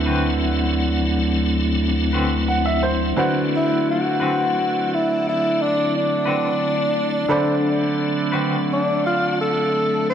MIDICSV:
0, 0, Header, 1, 5, 480
1, 0, Start_track
1, 0, Tempo, 688863
1, 2209, Time_signature, 12, 3, 24, 8
1, 7066, End_track
2, 0, Start_track
2, 0, Title_t, "Upright piano"
2, 0, Program_c, 0, 0
2, 0, Note_on_c, 0, 50, 55
2, 0, Note_on_c, 0, 66, 49
2, 0, Note_on_c, 0, 71, 50
2, 0, Note_on_c, 0, 72, 50
2, 0, Note_on_c, 0, 76, 59
2, 1730, Note_on_c, 0, 78, 53
2, 1840, Note_off_c, 0, 76, 0
2, 1841, Note_off_c, 0, 78, 0
2, 1850, Note_on_c, 0, 76, 52
2, 1959, Note_off_c, 0, 72, 0
2, 1961, Note_off_c, 0, 76, 0
2, 1970, Note_on_c, 0, 72, 57
2, 2177, Note_off_c, 0, 50, 0
2, 2179, Note_off_c, 0, 66, 0
2, 2182, Note_off_c, 0, 71, 0
2, 2192, Note_off_c, 0, 72, 0
2, 2205, Note_on_c, 0, 50, 59
2, 2212, Note_on_c, 0, 66, 53
2, 2212, Note_on_c, 0, 71, 50
2, 2216, Note_on_c, 0, 72, 54
2, 2221, Note_on_c, 0, 78, 58
2, 5058, Note_off_c, 0, 50, 0
2, 5061, Note_off_c, 0, 66, 0
2, 5061, Note_off_c, 0, 71, 0
2, 5063, Note_off_c, 0, 72, 0
2, 5066, Note_off_c, 0, 78, 0
2, 5076, Note_on_c, 0, 50, 54
2, 5080, Note_on_c, 0, 69, 50
2, 5084, Note_on_c, 0, 83, 49
2, 5086, Note_on_c, 0, 72, 49
2, 5094, Note_on_c, 0, 74, 63
2, 7066, Note_off_c, 0, 50, 0
2, 7066, Note_off_c, 0, 69, 0
2, 7066, Note_off_c, 0, 72, 0
2, 7066, Note_off_c, 0, 74, 0
2, 7066, Note_off_c, 0, 83, 0
2, 7066, End_track
3, 0, Start_track
3, 0, Title_t, "Tenor saxophone"
3, 0, Program_c, 1, 66
3, 2481, Note_on_c, 1, 64, 73
3, 2698, Note_off_c, 1, 64, 0
3, 2721, Note_on_c, 1, 66, 73
3, 3443, Note_on_c, 1, 64, 69
3, 3453, Note_off_c, 1, 66, 0
3, 3659, Note_off_c, 1, 64, 0
3, 3684, Note_on_c, 1, 64, 75
3, 3914, Note_on_c, 1, 62, 80
3, 3925, Note_off_c, 1, 64, 0
3, 4134, Note_off_c, 1, 62, 0
3, 4154, Note_on_c, 1, 62, 78
3, 5552, Note_off_c, 1, 62, 0
3, 6079, Note_on_c, 1, 62, 73
3, 6296, Note_off_c, 1, 62, 0
3, 6313, Note_on_c, 1, 65, 77
3, 6533, Note_off_c, 1, 65, 0
3, 6555, Note_on_c, 1, 69, 75
3, 7006, Note_off_c, 1, 69, 0
3, 7034, Note_on_c, 1, 72, 69
3, 7066, Note_off_c, 1, 72, 0
3, 7066, End_track
4, 0, Start_track
4, 0, Title_t, "Clean electric guitar"
4, 0, Program_c, 2, 27
4, 42, Note_on_c, 2, 71, 66
4, 46, Note_on_c, 2, 66, 56
4, 50, Note_on_c, 2, 60, 59
4, 53, Note_on_c, 2, 50, 54
4, 189, Note_off_c, 2, 71, 0
4, 191, Note_off_c, 2, 66, 0
4, 193, Note_off_c, 2, 60, 0
4, 194, Note_off_c, 2, 50, 0
4, 1483, Note_on_c, 2, 71, 68
4, 1494, Note_on_c, 2, 66, 66
4, 1495, Note_on_c, 2, 60, 61
4, 1497, Note_on_c, 2, 50, 60
4, 1630, Note_off_c, 2, 71, 0
4, 1635, Note_off_c, 2, 66, 0
4, 1636, Note_off_c, 2, 60, 0
4, 1637, Note_off_c, 2, 50, 0
4, 2926, Note_on_c, 2, 71, 61
4, 2934, Note_on_c, 2, 66, 51
4, 2935, Note_on_c, 2, 60, 54
4, 2941, Note_on_c, 2, 50, 48
4, 3071, Note_off_c, 2, 71, 0
4, 3075, Note_off_c, 2, 66, 0
4, 3076, Note_off_c, 2, 60, 0
4, 3079, Note_off_c, 2, 50, 0
4, 4359, Note_on_c, 2, 71, 59
4, 4368, Note_on_c, 2, 66, 56
4, 4373, Note_on_c, 2, 60, 54
4, 4377, Note_on_c, 2, 50, 49
4, 4507, Note_off_c, 2, 71, 0
4, 4512, Note_off_c, 2, 66, 0
4, 4515, Note_off_c, 2, 60, 0
4, 4516, Note_off_c, 2, 50, 0
4, 5798, Note_on_c, 2, 71, 67
4, 5806, Note_on_c, 2, 66, 59
4, 5810, Note_on_c, 2, 60, 54
4, 5813, Note_on_c, 2, 50, 49
4, 5946, Note_off_c, 2, 71, 0
4, 5950, Note_off_c, 2, 66, 0
4, 5952, Note_off_c, 2, 60, 0
4, 5953, Note_off_c, 2, 50, 0
4, 7066, End_track
5, 0, Start_track
5, 0, Title_t, "Tonewheel organ"
5, 0, Program_c, 3, 16
5, 0, Note_on_c, 3, 38, 54
5, 0, Note_on_c, 3, 54, 55
5, 0, Note_on_c, 3, 57, 55
5, 0, Note_on_c, 3, 60, 54
5, 0, Note_on_c, 3, 64, 57
5, 2185, Note_off_c, 3, 57, 0
5, 2185, Note_off_c, 3, 60, 0
5, 2185, Note_off_c, 3, 64, 0
5, 2186, Note_off_c, 3, 38, 0
5, 2187, Note_off_c, 3, 54, 0
5, 2206, Note_on_c, 3, 50, 58
5, 2206, Note_on_c, 3, 54, 56
5, 2206, Note_on_c, 3, 60, 61
5, 2206, Note_on_c, 3, 64, 57
5, 2208, Note_on_c, 3, 57, 59
5, 5058, Note_off_c, 3, 50, 0
5, 5058, Note_off_c, 3, 54, 0
5, 5058, Note_off_c, 3, 64, 0
5, 5059, Note_off_c, 3, 60, 0
5, 5060, Note_off_c, 3, 57, 0
5, 5091, Note_on_c, 3, 54, 60
5, 5091, Note_on_c, 3, 76, 57
5, 5094, Note_on_c, 3, 50, 58
5, 5094, Note_on_c, 3, 57, 53
5, 5095, Note_on_c, 3, 60, 57
5, 7066, Note_off_c, 3, 50, 0
5, 7066, Note_off_c, 3, 54, 0
5, 7066, Note_off_c, 3, 57, 0
5, 7066, Note_off_c, 3, 60, 0
5, 7066, Note_off_c, 3, 76, 0
5, 7066, End_track
0, 0, End_of_file